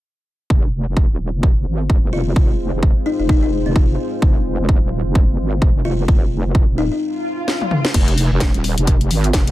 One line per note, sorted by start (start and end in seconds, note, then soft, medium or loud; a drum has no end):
0.50 0.85 F1 medium
0.50 6.97 G#3 medium
0.50 6.97 C4 medium
0.50 6.97 F4 medium
0.50 6.97 C5 medium
0.50 kick loud
0.87 1.08 F1 loud
0.97 kick loud
1.10 1.31 D#1 medium
1.33 1.65 F1 medium
1.43 kick loud
1.66 1.88 G#1 medium
1.90 2.35 F1 medium
1.90 kick loud
2.13 2.32 F4 medium
2.36 2.71 F1 loud
2.36 kick loud
2.73 2.94 F1 loud
2.83 kick loud
3.06 3.15 D#4 medium
3.19 3.64 F1 medium
3.19 3.26 D#4 medium
3.29 3.38 D#4 medium
3.29 kick loud
3.43 3.49 D#4 medium
3.66 3.97 F1 medium
3.66 4.30 C4 medium
3.76 kick loud
4.22 4.57 F1 loud
4.22 kick loud
4.59 4.80 F1 loud
4.69 kick loud
4.82 5.03 D#1 medium
5.05 5.37 F1 medium
5.15 kick loud
5.38 5.60 G#1 medium
5.62 6.07 F1 loud
5.62 kick loud
5.85 6.04 F4 medium
6.08 6.43 F1 loud
6.08 kick loud
6.45 6.66 F1 loud
6.55 kick loud
6.68 6.89 D#1 loud
6.78 6.87 D#4 medium
6.92 6.98 D#4 medium
7.01 swell medium
7.48 snare medium
7.61 high tom medium
7.71 mid tom medium
7.85 snare medium
7.94 8.29 F1 loud
7.94 kick loud
7.94 closed hi-hat medium
7.94 crash medium
8.08 closed hi-hat soft
8.18 open hi-hat loud
8.31 8.52 F1 loud
8.40 kick loud
8.40 snare loud
8.40 closed hi-hat medium
8.54 8.75 D#1 loud
8.54 closed hi-hat soft
8.64 open hi-hat medium
8.78 9.09 F1 loud
8.78 closed hi-hat medium
8.87 kick loud
8.87 closed hi-hat medium
9.01 closed hi-hat soft
9.11 9.32 G#1 loud
9.11 open hi-hat loud
9.24 closed hi-hat soft
9.33 9.51 F1 loud
9.33 kick loud
9.33 snare loud
9.33 closed hi-hat medium
9.47 closed hi-hat medium